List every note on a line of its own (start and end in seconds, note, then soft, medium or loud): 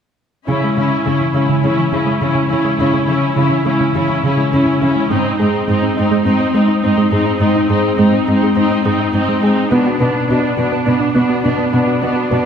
0.47 0.57 C#3 medium
0.47 0.57 C#3 soft
0.47 0.76 C#4 soft
0.47 0.76 E4 soft
0.64 0.72 G#3 soft
0.77 0.85 C#3 soft
0.77 1.05 C#4 soft
0.77 0.86 C#4 soft
0.77 1.05 E4 soft
1.06 1.15 C#3 medium
1.06 1.14 C#3 soft
1.06 1.33 C#4 soft
1.06 1.33 E4 soft
1.21 1.30 E3 soft
1.34 1.42 C#3 soft
1.34 1.43 G#3 soft
1.34 1.62 C#4 soft
1.34 1.62 E4 soft
1.49 1.58 C#3 medium
1.63 1.72 C#3 soft
1.63 1.72 E3 soft
1.63 1.91 C#4 soft
1.63 1.91 E4 soft
1.78 1.87 E3 soft
1.92 2.01 C#3 medium
1.92 2.01 C#3 soft
1.92 2.20 C#4 soft
1.92 2.19 E4 soft
2.06 2.15 G#3 soft
2.20 2.30 C#3 soft
2.20 2.30 E3 soft
2.20 2.49 C#4 soft
2.20 2.48 E4 soft
2.35 2.44 C#3 medium
2.49 2.59 C#3 soft
2.49 2.78 C#4 soft
2.49 2.59 C#4 soft
2.49 2.77 E4 soft
2.65 2.74 G#3 soft
2.78 2.88 C#3 medium
2.78 2.88 C#3 soft
2.78 3.06 C#4 soft
2.78 3.05 E4 soft
2.94 3.02 G#3 soft
3.07 3.16 C#3 soft
3.07 3.35 C#4 soft
3.07 3.17 C#4 soft
3.07 3.35 E4 soft
3.36 3.45 C#3 medium
3.36 3.45 C#3 soft
3.36 3.64 C#4 soft
3.36 3.65 E4 soft
3.51 3.60 E3 soft
3.65 3.74 C#3 soft
3.65 3.75 G#3 soft
3.65 3.94 C#4 soft
3.65 3.94 E4 soft
3.81 3.89 C#3 medium
3.95 4.03 C#3 soft
3.95 4.04 E3 soft
3.95 4.23 C#4 soft
3.95 4.24 E4 soft
4.10 4.18 E3 soft
4.24 4.32 C#3 medium
4.24 4.33 C#3 soft
4.24 4.52 C#4 soft
4.24 4.52 E4 soft
4.38 4.46 G#3 soft
4.52 4.61 C#3 soft
4.52 4.61 E3 soft
4.52 4.81 C#4 soft
4.52 4.81 E4 soft
4.67 4.75 C#3 medium
4.82 4.90 C#3 soft
4.82 4.90 C#4 soft
4.82 5.10 C#4 soft
4.82 5.10 E4 soft
4.96 5.05 G#3 soft
5.10 5.19 G#2 soft
5.10 5.19 G#3 medium
5.10 5.39 C4 soft
5.10 5.38 D#4 soft
5.25 5.33 D#4 soft
5.39 5.48 G#2 soft
5.39 5.67 C4 soft
5.39 5.67 D#4 soft
5.39 5.48 G#4 soft
5.68 5.77 G#2 soft
5.68 5.76 G#3 medium
5.68 5.96 C4 soft
5.68 5.96 D#4 soft
5.82 5.91 C4 soft
5.97 6.06 G#2 soft
5.97 6.24 C4 soft
5.97 6.06 D#4 soft
5.97 6.24 D#4 soft
6.11 6.20 G#3 medium
6.25 6.34 G#2 soft
6.25 6.34 C4 soft
6.25 6.53 C4 soft
6.25 6.53 D#4 soft
6.40 6.49 C4 medium
6.54 6.63 G#2 soft
6.54 6.63 G#3 medium
6.54 6.81 C4 soft
6.54 6.81 D#4 soft
6.68 6.77 D#4 soft
6.82 6.92 G#2 soft
6.82 7.10 C4 soft
6.82 6.92 C4 soft
6.82 7.10 D#4 soft
6.98 7.06 G#3 medium
7.12 7.20 G#2 soft
7.12 7.39 C4 soft
7.12 7.39 D#4 soft
7.12 7.21 G#4 soft
7.27 7.35 D#4 soft
7.40 7.48 G#2 soft
7.40 7.50 G#3 medium
7.40 7.69 C4 soft
7.40 7.69 D#4 soft
7.56 7.64 D#4 soft
7.69 7.77 G#2 soft
7.69 7.96 C4 soft
7.69 7.96 D#4 soft
7.69 7.79 G#4 medium
7.98 8.06 G#2 soft
7.98 8.07 G#3 medium
7.98 8.25 C4 soft
7.98 8.25 D#4 soft
8.14 8.22 C4 soft
8.26 8.35 G#2 soft
8.26 8.55 C4 soft
8.26 8.55 D#4 soft
8.26 8.37 D#4 soft
8.43 8.51 G#3 medium
8.56 8.64 G#2 soft
8.56 8.84 C4 soft
8.56 8.65 C4 medium
8.56 8.85 D#4 soft
8.71 8.80 C4 medium
8.85 8.93 G#2 soft
8.85 8.94 G#3 medium
8.85 9.13 C4 soft
8.85 9.14 D#4 soft
9.00 9.09 D#4 soft
9.13 9.21 G#2 medium
9.13 9.23 C4 soft
9.13 9.42 C4 soft
9.13 9.42 D#4 soft
9.29 9.37 G#3 medium
9.42 9.50 G#2 soft
9.42 9.71 C4 soft
9.42 9.71 D#4 soft
9.42 9.52 G#4 soft
9.58 9.66 D#4 soft
9.71 9.79 B2 soft
9.71 9.99 B3 soft
9.71 9.81 B3 medium
9.71 9.99 D4 soft
9.86 9.95 F#4 soft
10.00 10.08 B2 soft
10.00 10.28 B3 soft
10.00 10.28 D4 soft
10.00 10.09 B4 medium
10.29 10.37 B2 soft
10.29 10.38 B3 medium
10.29 10.57 B3 soft
10.29 10.57 D4 soft
10.43 10.52 D4 soft
10.57 10.66 B2 soft
10.57 10.85 B3 soft
10.57 10.85 D4 soft
10.57 10.66 F#4 soft
10.72 10.81 B3 medium
10.86 10.95 B2 soft
10.86 11.14 B3 soft
10.86 10.95 D4 soft
10.86 11.14 D4 soft
11.00 11.09 D4 medium
11.15 11.23 B2 soft
11.15 11.24 B3 medium
11.15 11.43 B3 soft
11.15 11.43 D4 soft
11.30 11.39 F#4 soft
11.44 11.53 B2 soft
11.44 11.71 B3 soft
11.44 11.71 D4 soft
11.44 11.53 D4 medium
11.59 11.67 B3 medium
11.72 11.81 B2 soft
11.72 12.01 B3 soft
11.72 12.01 D4 soft
11.72 11.82 B4 soft
11.87 11.96 F#4 medium
12.02 12.10 B2 soft
12.02 12.11 B3 medium
12.02 12.30 B3 soft
12.02 12.30 D4 soft
12.16 12.25 F#4 soft
12.31 12.39 B2 soft
12.31 12.46 B3 soft
12.31 12.46 D4 soft
12.31 12.40 B4 medium